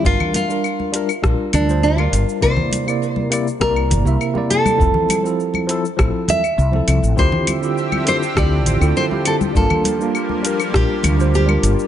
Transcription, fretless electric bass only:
X:1
M:4/4
L:1/16
Q:1/4=101
K:Gdor
V:1 name="Fretless electric bass" clef=bass
G,,, z6 z B,,, z D,,4 G,,, z | C,, z6 z C,,2 G,,, C,, z4 | F,,, z6 z A,,, z3 C,, z C,, A,,, | D,, z6 z D,,2 A,,, D,, z4 |
G,,, z6 z B,,, z D,,4 G,,, z |]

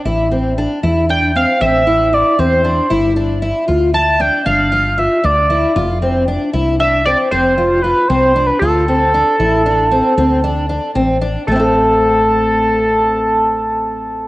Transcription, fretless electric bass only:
X:1
M:11/8
L:1/8
Q:1/4=116
K:Am
V:1 name="Fretless electric bass" clef=bass
A,,,3 E,,3 A,,,3 E,,2 | G,,,3 D,,3 G,,,3 D,,2 | F,,,3 C,,3 F,,,3 C,,2 | D,,3 A,,,3 D,,3 A,,,2 |
A,,,8- A,,,3 |]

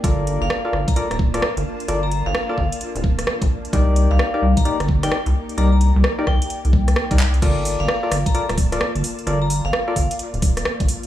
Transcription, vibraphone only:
X:1
M:4/4
L:1/16
Q:"Swing 16ths" 1/4=130
K:Gm
V:1 name="Vibraphone"
z3 f4 b b z6 z | z b2 f4 z8 z | z3 f4 b b z2 g g z3 | b b z4 g6 z4 |
z3 f4 b b z6 z | z b2 f4 z8 z |]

